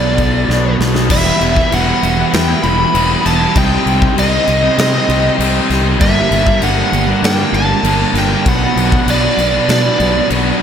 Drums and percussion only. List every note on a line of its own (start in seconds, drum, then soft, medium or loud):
0.18 kick medium
0.18 crash medium
0.50 snare medium
0.81 snare medium
0.95 snare medium
1.10 kick loud
1.10 crash loud
1.10 crash medium
1.41 crash medium
1.56 kick medium
1.72 crash medium
2.03 crash medium
2.33 snare loud
2.33 crash medium
2.63 crash medium
2.95 crash medium
3.26 crash medium
3.56 kick loud
3.56 crash medium
3.87 crash medium
4.02 kick medium
4.18 crash medium
4.48 crash medium
4.78 snare loud
4.78 crash medium
5.10 crash medium
5.40 crash medium
5.70 snare soft
5.70 crash medium
6.01 kick loud
6.01 crash medium
6.32 crash medium
6.47 kick medium
6.62 crash medium
6.93 crash medium
7.24 snare loud
7.24 crash medium
7.54 crash medium
7.84 crash medium
8.15 snare soft
8.15 crash medium
8.46 kick loud
8.46 crash medium
8.77 crash medium
8.92 kick medium
9.08 crash medium
9.38 crash medium
9.69 snare loud
9.69 crash medium
10.00 crash medium
10.30 crash medium